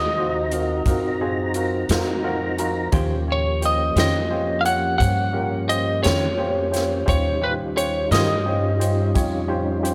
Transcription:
Already playing: upright bass D#2, tonewheel organ C4 D#4 F#4 A#5, lead electric guitar D#5
0.18 upright piano C4 F4 F#4 C5
0.51 upright piano C4 F4 F#4 A#4, closed hi-hat
0.86 upright bass F#2, upright piano C4 F4 F#4 A#4, kick, closed hi-hat
1.21 upright piano C4 F4 F#4 G#4
1.54 upright piano C4 F4 F#4 A#4, closed hi-hat
1.89 upright bass F2, upright piano C4 F4 F#4 A#4, snare, closed hi-hat
2.23 upright piano C4 F4 F#4 A#4 F#5
2.58 upright piano C4 F4 F#4 A#4 A#5, closed hi-hat
2.92 upright bass D#2, clean electric guitar D#3 C#4 G4 C5, tonewheel organ F3 A#3 C#4 G4, upright piano C#4 F4 G4 C5, kick, closed hi-hat
3.27 upright piano C#4 F4 G4 C#5
3.32 lead electric guitar C#5
3.61 upright piano C#4 F4 G4 C5, closed hi-hat
3.65 lead electric guitar D#5
3.96 upright bass F2, clean electric guitar D#3 C#4 G4 C5, upright piano C#4 F4 G4 C5, snare, closed hi-hat
4.00 lead electric guitar D#5
4.30 upright piano C#4 F4 G4 C5
4.61 upright piano C#4 F4 G4, lead electric guitar F5
4.65 upright piano C#5, lead electric guitar F#5, closed hi-hat
4.98 upright bass G2, upright piano C#4 F4 G4 C5, lead electric guitar F#5, kick, closed hi-hat
5.33 upright piano C#4 F4 G4 A#4
5.67 upright piano C#4 F4 G4 C5, lead electric guitar D#5, closed hi-hat
6.03 upright bass F2, upright piano C#4 F4 G4 C#5, clean electric guitar C#4 G4 C5, lead electric guitar C#5, snare, closed hi-hat
6.07 clean electric guitar D#3
6.37 upright piano C#4 F4 G4 C5
6.71 upright piano C#4 F4 G4 C5, snare, closed hi-hat
7.06 upright bass D#2, upright piano C#4 F4 G4 C5, lead electric guitar C#5, kick, closed hi-hat
7.10 tonewheel organ G3 C#4 D#4 F4
7.41 upright piano C#4 F4 G4 C5, lead electric guitar B4
7.75 upright piano C#4 F4 G4 C5, lead electric guitar C#5, closed hi-hat
8.11 upright bass G2, clean electric guitar D#3 C#4 G4 C5, upright piano C#4 F4 G4 A#4, lead electric guitar D#5, snare, closed hi-hat
8.45 upright piano C#4 F4 G4 C5
8.79 upright piano C#4 F4 G4 C5, closed hi-hat
9.15 upright bass F2, upright piano C#4 F4 G4 C#5, kick, closed hi-hat
9.48 upright piano C#4 F4 G4 C5
9.82 upright piano C#4 F4 G4 C5, closed hi-hat

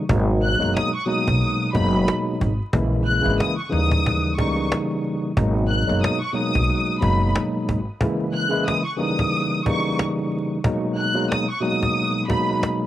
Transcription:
0.09 upright bass G#1, tine electric piano B2 F#3 G#3 A#3 D#4, cajon bass
0.42 violin section F#6, cajon slap
0.59 upright bass F#1, tine electric piano B2 F#3 G#3 A#3 D#4
0.77 violin section D#6, cajon slap
0.95 violin section C#6
1.05 tine electric piano B2 F#3 G#3 A#3 D#4, violin section D#6, cajon slap
1.28 upright bass B1, cajon bass
1.42 cajon slap
1.73 upright bass F#1, tine electric piano B2 F#3 G#3 A#3 D#4, violin section B5, cajon bass
2.08 cajon slap
2.41 upright bass G#1, cajon bass
2.73 upright bass A#1, tine electric piano C#3 E3 G#3 A#3 E4, cajon bass
2.93 cajon slap
3.05 violin section F#6, cajon slap
3.22 upright bass G#1, tine electric piano C#3 E3 G#3 A#3 E4
3.40 violin section D#6, cajon slap
3.58 violin section C#6
3.70 upright bass D#2, tine electric piano C#3 E3 G3 A#3 D#4, violin section D#6
3.91 cajon bass
4.06 cajon bass
4.37 upright bass C#2, tine electric piano C#3 E3 G3 A#3 D#4, violin section C#6, cajon bass
4.72 cajon slap
4.92 cajon slap
5.04 cajon slap
5.36 upright bass G#1, tine electric piano B2 F#3 G#3 A#3 D#4, cajon bass
5.69 violin section F#6, cajon slap
5.86 upright bass F#1, tine electric piano B2 F#3 G#3 A#3 D#4
6.03 violin section D#6, cajon slap
6.22 violin section C#6
6.33 tine electric piano B2 F#3 G#3 A#3 D#4, violin section D#6, cajon slap
6.55 upright bass B1, cajon bass
6.70 cajon slap
7.00 upright bass F#1, tine electric piano B2 F#3 G#3 A#3 D#4, violin section B5, cajon bass
7.35 cajon slap
7.69 upright bass G#1, cajon bass
8.01 tine electric piano C#3 E3 G#3 A#3 E4, cajon bass
8.20 cajon slap
8.33 violin section F#6, cajon slap
8.49 tine electric piano C#3 E3 G#3 A#3 E4
8.67 violin section D#6, cajon slap
8.85 violin section C#6
8.97 tine electric piano C#3 E3 G3 A#3 D#4, violin section D#6, cajon slap
9.19 cajon bass
9.33 cajon slap
9.65 tine electric piano C#3 E3 G3 A#3 D#4, violin section C#6, cajon bass
9.99 cajon slap
10.19 cajon slap
10.32 cajon slap
10.64 tine electric piano B2 F#3 G#3 A#3 D#4, cajon bass
10.97 violin section F#6, cajon slap
11.14 tine electric piano B2 F#3 G#3 A#3 D#4
11.31 violin section D#6, cajon slap
11.50 violin section C#6
11.60 tine electric piano B2 F#3 G#3 A#3 D#4, violin section D#6, cajon slap
11.83 cajon bass
11.97 cajon slap
12.28 tine electric piano B2 F#3 G#3 A#3 D#4, violin section B5, cajon bass
12.63 cajon slap

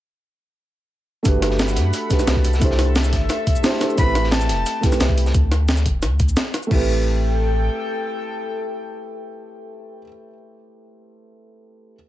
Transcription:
1.23 sub bass G1, felt piano A3 D4 F#4 G4, analog synth pad A4 F#5 B5, kick, closed hi-hat, cabasa
1.28 felt piano B4
1.42 snare, closed hi-hat
1.51 snare
1.59 snare, closed hi-hat, cabasa
1.68 cabasa
1.76 sub bass G2, snare, closed hi-hat
1.94 closed hi-hat, cabasa
2.09 felt piano A3 D4 F#4 G4 B4, kick, snare, closed hi-hat, cabasa
2.19 snare, closed hi-hat, cabasa
2.27 sub bass C2, snare, closed hi-hat, cabasa
2.36 kick
2.44 analog synth pad E5, closed hi-hat, cabasa
2.53 snare, cabasa
2.59 sub bass C2, felt piano A3 D4 E4 G4, kick, closed hi-hat, cabasa
2.64 felt piano C5
2.71 snare
2.79 snare, closed hi-hat
2.96 snare, closed hi-hat, cabasa
3.04 cabasa
3.13 sub bass G1, kick, snare, closed hi-hat
3.29 snare, closed hi-hat, cabasa
3.47 kick, closed hi-hat, cabasa
3.56 cabasa
3.63 felt piano A3 D4 E4 G4 C5, snare, closed hi-hat, open hi-hat, cabasa
3.80 felt piano A3 D4 E4 G4 C5, snare, closed hi-hat, cabasa
3.90 cabasa
3.95 sub bass A1, felt piano A3 C4 E4 G4, analog synth pad G5, flute B5, kick, closed hi-hat, cabasa
4.01 felt piano B4
4.15 snare, closed hi-hat
4.24 snare
4.31 flute A5, snare, closed hi-hat, cabasa
4.41 cabasa
4.49 sub bass E1, snare, closed hi-hat
4.66 closed hi-hat, cabasa
4.81 felt piano A3 C4 E4 G4, kick, snare, closed hi-hat, cabasa
4.86 felt piano B4
4.92 snare, closed hi-hat, cabasa
5.00 sub bass C2, snare, closed hi-hat, cabasa
5.09 kick
5.17 closed hi-hat, cabasa
5.26 snare, cabasa
5.35 sub bass D2, kick, closed hi-hat, cabasa
5.52 snare, closed hi-hat
5.69 snare, closed hi-hat, cabasa
5.77 cabasa
5.86 sub bass D1, kick, closed hi-hat
6.02 sub bass D2, snare, closed hi-hat, cabasa
6.20 kick, closed hi-hat, cabasa
6.29 cabasa
6.37 snare, closed hi-hat, cabasa
6.54 snare, closed hi-hat, cabasa
6.63 felt piano A3, cabasa
6.69 sub bass A1, felt piano C4 E4 G4, analog synth pad A4 G5, kick, crash
6.75 felt piano B4

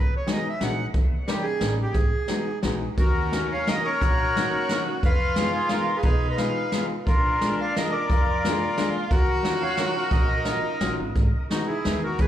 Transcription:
0.00 accordion B4
0.17 accordion C#5
0.27 upright piano F#3 G#3 B3 D#4, snare, closed hi-hat
0.33 accordion D#5
0.49 accordion E5
0.60 upright bass A#1, upright piano F#3 G#3 B3 D#4, accordion F#5, snare, closed hi-hat
0.94 upright bass D#2, kick, closed hi-hat
1.27 upright piano G3 A#3 C#4 D#4, accordion G4, snare, closed hi-hat
1.42 accordion G#4
1.60 upright bass A1, upright piano G3 A#3 C#4 D#4, snare, closed hi-hat
1.83 accordion G4
1.92 upright bass G#1, accordion G#4, kick, closed hi-hat
2.28 upright piano F#3 G#3 B3 D#4, snare, closed hi-hat
2.63 upright bass A#1, upright piano F#3 G#3 B3 D#4, snare, closed hi-hat
2.97 upright bass D#2, violin C#4, accordion F#4 A#4, kick, closed hi-hat
3.32 upright piano F#3 A#3 C#4 D#4, snare, closed hi-hat
3.52 accordion C#5 F5
3.67 upright piano F#3 A#3 C#4 D#4, accordion A#4 D#5, snare, closed hi-hat
3.84 accordion A#4 C#5
4.01 upright bass A#1, violin F#4, kick, closed hi-hat
4.36 upright piano F#3 A#3 C#4 D#4, snare, closed hi-hat
4.69 upright piano F#3 A#3 C#4 D#4, snare, closed hi-hat
5.03 upright bass F2, violin F4, accordion B4 F5, kick, closed hi-hat
5.36 upright piano G#3 B3 D#4 F4, snare, closed hi-hat
5.54 accordion F4 G#4
5.69 upright piano G#3 B3 D#4 F4, accordion F4 A#4, snare, closed hi-hat
5.97 accordion G#4 B4
6.02 upright bass B2, violin D#4, accordion G#4 B4, kick, closed hi-hat
6.30 accordion B4 D#5
6.37 upright piano G#3 B3 D#4 F4, accordion B4 F5, snare, closed hi-hat
6.72 upright piano G#3 B3 D#4 F4, snare, closed hi-hat
7.07 upright bass A#1, violin D4, accordion F4 A#4, kick, closed hi-hat
7.41 upright piano G#3 A#3 D4 F4, snare, closed hi-hat
7.60 accordion D5 F5
7.76 upright piano G#3 A#3 D4 F4, accordion A#4 D#5, snare, closed hi-hat
7.91 accordion A#4 D5
8.08 upright bass F2, violin F4, kick, closed hi-hat
8.42 upright piano G#3, violin F4, snare, closed hi-hat
8.46 upright piano A#3 D4 F4
8.77 upright piano G#3 A#3 D4 F4, snare, closed hi-hat
9.10 upright bass D#2, accordion F#4 A#4, violin F#4, kick, closed hi-hat
9.43 upright piano F#3 C#4 D#4 F4, snare, closed hi-hat
9.62 accordion C#5 F5
9.77 upright piano F#3 C#4 D#4 F4, accordion A#4 C#5, snare, closed hi-hat
9.96 accordion F#4 A#4
10.11 upright bass A#1, accordion A#4 D#5, kick, closed hi-hat
10.45 upright piano F#3 C#4 D#4 F4, violin D#4, snare, closed hi-hat
10.80 upright bass A#1, upright piano F#3 C#4 D#4 F4, snare, closed hi-hat
10.99 upright bass G#1
11.15 upright bass G#1, kick, closed hi-hat
11.50 upright piano D#3 G#3 B3 D#4, accordion D#4 F#4, snare, closed hi-hat
11.67 accordion E4 G#4
11.85 upright bass D#2, upright piano D#3 G#3 B3 D#4, snare, closed hi-hat
12.03 accordion F#4 A#4
12.18 upright bass G#1, accordion G#4 B4, kick, closed hi-hat

